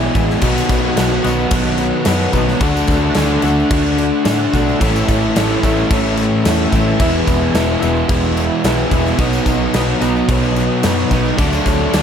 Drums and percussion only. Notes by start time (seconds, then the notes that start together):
0.02 tambourine
0.15 kick, tambourine, crash
0.30 snare, tambourine
0.41 kick, crash
0.58 tambourine
0.69 kick, tambourine, crash
0.97 snare, tambourine, crash
1.24 tambourine, crash
1.40 tambourine
1.51 kick, crash
1.67 tambourine
1.78 crash
2.05 snare, tambourine, crash
2.22 tambourine
2.33 kick, tambourine, crash
2.48 snare, tambourine
2.61 kick, crash
2.77 tambourine
2.87 kick, tambourine, crash
3.14 snare, crash
3.18 tambourine
3.42 tambourine, crash
3.60 tambourine
3.71 kick, crash
3.87 tambourine
3.98 crash
4.25 snare, tambourine, crash
4.54 kick, tambourine, crash
4.69 tambourine
4.81 kick, tambourine, crash
4.96 tambourine
5.08 kick, tambourine, crash
5.23 tambourine
5.36 snare, tambourine, crash
5.50 tambourine
5.63 kick, tambourine, crash
5.77 tambourine
5.90 kick, tambourine, crash
6.05 tambourine
6.17 tambourine, crash
6.45 snare, tambourine, crash
6.72 kick, tambourine, crash
7.00 kick, crash
7.27 kick, tambourine, crash
7.55 snare, tambourine, crash
7.82 tambourine, crash
7.97 tambourine
8.09 kick, crash
8.23 tambourine
8.37 crash
8.64 snare, tambourine, crash
8.91 kick, tambourine, crash
9.06 snare, tambourine
9.19 kick, crash
9.33 tambourine
9.46 kick, tambourine, crash
9.74 snare, tambourine, crash
10.01 tambourine, crash
10.16 tambourine
10.29 kick, crash
10.43 tambourine
10.56 crash
10.83 snare, tambourine, crash
11.11 kick, tambourine, crash
11.25 tambourine
11.38 kick, crash
11.53 tambourine
11.66 kick, tambourine, crash
11.93 snare, tambourine, crash